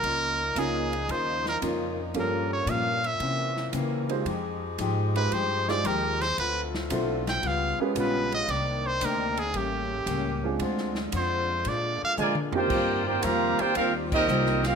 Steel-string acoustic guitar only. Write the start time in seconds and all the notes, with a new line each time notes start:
0.03 C#3 A#3 D#4 F4
0.56 C#3 A#3 D#4 F4
1.09 C#3 A#3 D#4 F4
1.62 C#3 A#3 D#4 F4
2.14 G2 F3 A#3 C#4
2.67 G2 F3 A#3 C#4
3.21 C3 E3 A#3 C#4
3.73 C3 E3 A#3 C#4
4.25 F3 G#3 D#4 G4
4.79 F3 G#3 D#4 G4
5.31 F3 G#3 D#4 G4
5.85 F3 G#3 D#4 G4
6.38 D3 C4 F4 A4
6.91 D3 C4 F4 A4
7.44 C#3 G3 B3 F4
7.97 C#3 G3 B3 F4
8.49 C3 D#3 A#3 D4
9.02 C3 D#3 A#3 D4
9.54 A2 G3 A#3 C#4
10.07 A2 G3 A#3 C#4
10.60 D3 G#3 C4 F4
11.12 D3 G#3 C4 F4
11.65 A#2 G#3 D4 F4
12.19 A#2 G#3 D4 F4
12.72 D#3 G3 C4 F4
13.24 D#3 G3 C4 F4
13.76 D#3 G3 C4 F4
14.29 D#3 G3 C4 F4